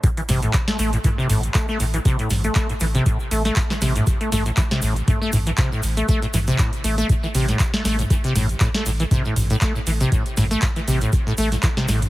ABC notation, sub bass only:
X:1
M:4/4
L:1/8
Q:"Swing 16ths" 1/4=119
K:Am
V:1 name="Sub bass" clef=bass
z A,,, z A,,, z A,,, z A,,, | z A,,, z A,,, z A,,, z A,,, | z A,,, z A,,, z A,,, z A,,, | z A,,, z A,,, z A,,, z A,,, |
z A,,, z A,,, z A,,, z A,,, | z A,,, z A,,, z A,,, z A,,, |]